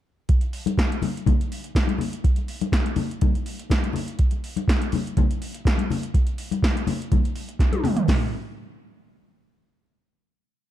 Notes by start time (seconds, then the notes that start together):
0.29 kick, closed hi-hat, muted conga
0.41 closed hi-hat
0.53 open hi-hat
0.66 closed hi-hat, high conga
0.78 kick, snare, closed hi-hat, muted conga
0.90 closed hi-hat, muted conga
1.02 open hi-hat, high conga, low conga
1.17 closed hi-hat
1.26 kick, closed hi-hat, muted conga, high conga, low conga
1.41 closed hi-hat
1.52 open hi-hat
1.64 closed hi-hat
1.75 kick, snare, closed hi-hat
1.87 closed hi-hat, muted conga, high conga
1.98 open hi-hat, low conga
2.13 closed hi-hat
2.24 kick, closed hi-hat, muted conga
2.36 closed hi-hat, muted conga
2.48 open hi-hat
2.61 closed hi-hat, high conga
2.72 kick, snare, closed hi-hat, muted conga
2.85 closed hi-hat, muted conga
2.96 open hi-hat, high conga, low conga
3.11 closed hi-hat
3.21 kick, closed hi-hat, muted conga, high conga, low conga
3.33 closed hi-hat, muted conga
3.46 open hi-hat
3.59 closed hi-hat
3.70 kick, snare, closed hi-hat, muted conga
3.82 closed hi-hat, high conga
3.93 open hi-hat, low conga
4.08 closed hi-hat
4.19 kick, closed hi-hat
4.31 closed hi-hat, muted conga
4.44 open hi-hat
4.56 closed hi-hat, high conga
4.68 kick, snare, closed hi-hat
4.81 closed hi-hat, muted conga
4.92 open hi-hat, high conga, low conga
5.07 closed hi-hat
5.17 kick, closed hi-hat, muted conga, high conga, low conga
5.31 closed hi-hat
5.42 open hi-hat
5.54 closed hi-hat
5.65 kick, snare, closed hi-hat, muted conga
5.78 closed hi-hat, high conga
5.90 open hi-hat, low conga
6.03 closed hi-hat
6.14 kick, closed hi-hat, muted conga
6.27 closed hi-hat
6.38 open hi-hat
6.51 closed hi-hat, high conga
6.63 kick, snare, closed hi-hat
6.75 closed hi-hat, muted conga
6.87 open hi-hat, high conga, low conga
7.02 closed hi-hat
7.12 kick, closed hi-hat, muted conga, high conga, low conga
7.24 closed hi-hat, muted conga
7.36 open hi-hat
7.49 closed hi-hat
7.59 kick, snare, closed hi-hat
7.72 closed hi-hat, high tom, high conga
7.84 mid tom, open hi-hat, low conga
7.97 closed hi-hat, floor tom
8.08 kick, snare, open hi-hat, high conga